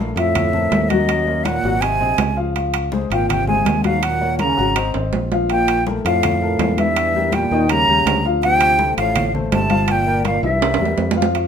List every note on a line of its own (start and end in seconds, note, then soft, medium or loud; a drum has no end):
0.00 0.13 A#1 medium
0.00 0.13 A3 medium
0.00 0.13 A4 medium
0.00 0.13 A#4 medium
0.16 0.68 F2 loud
0.16 0.91 A2 medium
0.16 0.47 F3 medium
0.16 0.47 F4 medium
0.16 0.90 E5 medium
0.16 0.47 E5 medium
0.16 high conga soft
0.16 high timbale medium
0.35 high conga soft
0.35 low conga medium
0.35 high timbale medium
0.53 0.84 C4 medium
0.53 0.84 A4 medium
0.53 0.84 A#4 medium
0.53 high conga soft
0.53 low conga medium
0.72 1.58 D#2 medium
0.72 high conga medium
0.72 high timbale medium
0.72 low timbale medium
0.89 1.48 F#2 medium
0.89 1.21 F#3 medium
0.89 1.21 F#4 medium
0.89 1.46 D#5 medium
0.89 1.21 F#5 medium
0.89 high conga medium
0.89 high timbale medium
1.09 high conga soft
1.09 high timbale medium
1.27 1.57 A#3 medium
1.27 1.58 A#4 medium
1.27 1.58 C#5 medium
1.27 high conga soft
1.44 1.83 A#2 medium
1.44 1.83 F#5 medium
1.44 high conga medium
1.44 high timbale medium
1.44 low timbale medium
1.64 1.98 G#1 medium
1.64 1.80 F#3 medium
1.64 1.80 F#4 medium
1.64 1.80 F#5 medium
1.64 high conga soft
1.81 2.37 C3 medium
1.81 1.98 C4 medium
1.81 1.98 C5 medium
1.81 1.98 D#5 medium
1.81 2.37 G#5 loud
1.81 high conga soft
1.81 high timbale medium
2.00 2.18 A#1 medium
2.00 2.31 C4 medium
2.00 2.31 C5 medium
2.00 2.31 D#5 medium
2.00 high conga soft
2.18 3.05 C#2 medium
2.18 high conga soft
2.18 high timbale medium
2.18 low timbale medium
2.37 2.52 F3 medium
2.37 2.52 F4 medium
2.37 2.52 F5 medium
2.37 high conga soft
2.56 2.86 F3 medium
2.56 2.86 F4 medium
2.56 2.86 F5 medium
2.56 high conga soft
2.56 high timbale medium
2.74 high conga soft
2.74 high timbale loud
2.92 3.07 G#3 medium
2.92 3.08 G#4 medium
2.92 3.08 C5 medium
2.92 high conga medium
2.92 low timbale medium
3.10 3.62 G#1 medium
3.10 3.29 A#2 medium
3.10 3.41 F3 medium
3.10 3.41 F4 medium
3.10 3.41 F5 medium
3.10 3.29 G5 medium
3.10 high conga soft
3.10 high timbale medium
3.29 3.47 C3 medium
3.29 3.47 G5 medium
3.29 high conga soft
3.29 low conga medium
3.29 high timbale loud
3.47 3.83 C3 medium
3.47 3.78 G#3 medium
3.47 3.78 G#4 medium
3.47 3.79 C5 medium
3.47 3.82 G#5 loud
3.47 high conga soft
3.47 low conga medium
3.65 4.52 D#2 medium
3.65 high conga medium
3.65 high timbale medium
3.65 low timbale medium
3.84 4.07 G#2 medium
3.84 4.15 F#3 medium
3.84 4.15 F#4 medium
3.84 4.05 F5 medium
3.84 4.15 F#5 medium
3.84 high conga medium
3.84 high timbale medium
4.03 4.41 A#2 medium
4.03 4.39 F#5 loud
4.03 high timbale loud
4.21 4.51 A#3 medium
4.21 4.51 A#4 medium
4.21 4.52 C#5 medium
4.21 high conga soft
4.39 4.75 C#3 loud
4.39 4.91 A#5 medium
4.39 high conga loud
4.39 high timbale medium
4.39 low timbale medium
4.57 4.92 G#1 medium
4.57 4.72 F#3 medium
4.57 4.72 F#4 medium
4.57 4.73 F#5 medium
4.57 high conga soft
4.75 4.91 C4 medium
4.75 4.91 C5 medium
4.75 4.91 D#5 medium
4.75 high conga soft
4.75 high timbale loud
4.94 5.12 G#1 medium
4.94 5.25 C4 medium
4.94 5.25 C5 medium
4.94 5.25 D#5 medium
4.94 high conga soft
4.94 high timbale medium
5.13 5.99 A#1 medium
5.13 high conga soft
5.13 low timbale loud
5.31 5.47 F3 medium
5.31 5.47 F4 medium
5.31 5.47 F5 medium
5.31 high conga soft
5.31 low timbale medium
5.49 5.84 A#2 medium
5.49 5.80 F3 medium
5.49 5.80 F4 medium
5.49 5.80 F5 medium
5.49 5.84 G5 loud
5.49 high conga soft
5.49 high timbale medium
5.68 high conga soft
5.68 high timbale medium
5.87 6.02 A3 medium
5.87 6.02 A4 medium
5.87 6.02 A#4 medium
5.87 high conga medium
5.87 low timbale medium
6.05 6.56 F2 medium
6.05 6.79 A2 medium
6.05 6.35 F3 medium
6.05 6.35 F4 medium
6.05 6.35 F5 medium
6.05 6.81 F5 medium
6.05 high conga soft
6.05 high timbale medium
6.23 high conga soft
6.23 low conga medium
6.23 high timbale loud
6.41 6.71 F3 medium
6.41 6.72 A4 medium
6.41 6.72 A#4 medium
6.41 high conga soft
6.59 7.45 E2 loud
6.59 high conga medium
6.59 high timbale medium
6.59 low timbale medium
6.77 7.34 G2 medium
6.77 7.09 E3 medium
6.77 7.09 E4 medium
6.77 7.36 E5 loud
6.77 7.09 E5 medium
6.77 high conga medium
6.77 high timbale medium
6.96 high conga soft
6.96 high timbale medium
7.14 7.45 G3 medium
7.14 7.46 G4 medium
7.14 7.46 A#4 medium
7.14 high conga soft
7.32 7.70 A#2 medium
7.32 7.72 G5 medium
7.32 high conga medium
7.32 high timbale medium
7.32 low timbale medium
7.51 7.85 D#2 medium
7.51 7.67 D#3 medium
7.51 7.67 D#4 medium
7.51 7.67 D#5 medium
7.51 high conga soft
7.69 8.24 C#3 loud
7.69 7.86 G3 medium
7.69 7.86 G4 medium
7.69 7.86 A#4 medium
7.69 8.25 A#5 loud
7.69 high conga soft
7.69 high timbale loud
7.88 8.05 D#2 medium
7.88 8.19 G3 medium
7.88 8.19 G4 medium
7.88 8.19 A#4 medium
7.88 high conga soft
8.06 8.92 D2 loud
8.06 high timbale loud
8.06 low timbale medium
8.25 8.40 F3 medium
8.25 8.40 F4 medium
8.25 8.40 F5 medium
8.25 high conga soft
8.43 8.94 C3 medium
8.43 8.73 F3 medium
8.43 8.73 F4 medium
8.43 8.73 F5 medium
8.43 8.94 G5 loud
8.43 high conga soft
8.43 high timbale medium
8.61 high conga soft
8.61 high timbale medium
8.79 8.95 A3 medium
8.79 8.95 A4 medium
8.79 8.95 C5 medium
8.79 high conga medium
8.79 low timbale medium
8.97 9.49 A1 medium
8.97 9.32 A2 medium
8.97 9.28 F3 medium
8.97 9.28 F4 medium
8.97 9.28 F5 medium
8.97 9.32 F5 medium
8.97 high conga soft
8.97 high timbale medium
9.16 high conga soft
9.16 low conga medium
9.16 high timbale loud
9.34 9.64 A3 medium
9.34 9.65 A4 medium
9.34 9.65 C5 medium
9.34 high conga soft
9.34 low conga medium
9.52 10.38 G1 loud
9.52 9.91 C3 medium
9.52 9.93 A5 loud
9.52 high conga medium
9.52 high timbale medium
9.52 low timbale medium
9.70 10.01 F3 medium
9.70 10.01 F4 medium
9.70 10.01 F5 loud
9.70 high conga medium
9.70 high timbale medium
9.88 10.25 A#2 medium
9.88 10.26 G5 loud
9.88 high conga soft
9.88 high timbale medium
10.07 10.37 A#3 medium
10.07 10.38 A#4 medium
10.07 10.38 D5 medium
10.25 10.43 A#2 medium
10.25 10.43 F5 medium
10.25 high conga loud
10.25 high timbale medium
10.25 low timbale medium
10.43 10.78 C2 medium
10.43 11.14 G2 medium
10.43 10.59 E3 medium
10.43 10.59 E4 loud
10.43 10.59 E5 medium
10.43 11.14 E5 medium
10.43 high conga soft
10.62 10.77 G3 medium
10.62 10.78 G4 medium
10.62 10.78 A#4 medium
10.62 high conga soft
10.62 high timbale loud
10.74 high timbale loud
10.79 10.97 E2 medium
10.79 11.11 G3 medium
10.79 11.11 G4 medium
10.79 11.12 A#4 medium
10.79 high conga soft
10.86 low timbale medium
10.98 11.47 F2 medium
10.98 high conga soft
10.98 low timbale loud
11.11 low timbale medium
11.17 11.32 F3 medium
11.17 11.32 F4 medium
11.17 11.32 F5 medium
11.17 high conga soft
11.22 low timbale medium
11.35 11.47 F3 medium
11.35 11.47 F4 medium
11.35 11.47 F5 medium
11.35 high conga soft
11.35 high timbale medium